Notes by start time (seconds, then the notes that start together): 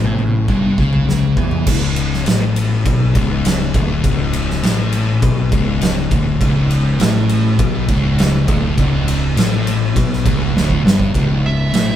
Already playing: A1 A2
0.04 floor tom
0.19 floor tom
0.48 G1 G2, kick, floor tom
0.78 C#2 C#3, kick, floor tom
0.93 floor tom
1.07 C#2 C#3, snare
1.37 E2 E3, kick, floor tom, mid tom
1.51 mid tom
1.67 C#1 C#2, kick, crash
1.96 ride
2.13 snare
2.26 A1 A2, snare, ride
2.56 ride
2.86 B1 B2, kick, ride
3.15 C#1 C#2, kick, ride
3.45 snare, ride
3.74 D1 D2, kick, ride
4.04 C#1 C#2, kick, ride
4.33 ride
4.50 snare
4.63 A1 A2, snare, ride
4.92 ride
5.22 B1 B2, kick, ride
5.52 C#1 C#2, kick, ride
5.81 snare, ride
6.11 D1 D2, kick, ride
6.41 C#1 C#2, kick, ride
6.71 ride
7.00 A1 A2, snare, ride
7.29 ride
7.59 B1 B2, kick, ride
7.88 C#1 C#2, kick, ride
8.19 snare, ride
8.48 D1 D2, kick, ride
8.77 C#1 C#2, kick, ride
9.08 ride
9.36 A1 A2, snare, ride
9.67 ride
9.95 B1 B2, kick, ride
10.13 snare
10.25 C#1 C#2, kick, ride
10.55 D1 D2, snare
10.70 kick
10.85 G1 G2, snare
11.00 kick
11.14 C#1 C#2, kick, ride bell
11.46 E5
11.73 A1 A2, snare, ride bell